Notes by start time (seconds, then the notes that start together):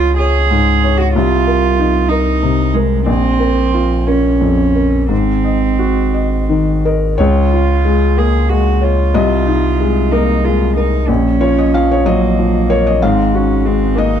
Already playing: C#2 F4 C#5
0.18 G#4 C#5
0.50 G#2
0.84 C#5
0.97 F#4
1.14 C2 F4
1.47 A#4
1.79 D#4
2.09 D#4 A#4
2.43 C3
2.74 G#3 A#4
3.06 A#1 C4
3.40 A#4
3.74 F4
4.06 C#4 A#4
4.41 F2
4.75 A#4
5.09 G#1 G#2 C4
5.45 D#5
5.79 F#4
6.14 D#5
6.49 D#3
6.85 A#4 D#5
7.18 C#2 F4 C#5
7.53 F4
7.85 G#3
8.17 A#3 G#4
8.49 G#3 F#4
8.81 F4 C#5
9.14 C2 D#5
9.47 D#4
9.80 G#3
10.12 A#3 D#4 A#4
10.45 G#3 F4
10.77 D#4 A#4
11.08 A#1 C#4
11.41 F4 C#5
11.58 D#5
11.74 F3 F5
11.91 C#5
12.05 F#3 A#3 D#5
12.38 F3
12.70 A#4 C#5
12.87 D#5
13.01 G#1 G#2 C4 F5
13.34 C#4 F#4
13.65 G#3 C4
13.95 A#3 D#4 D#5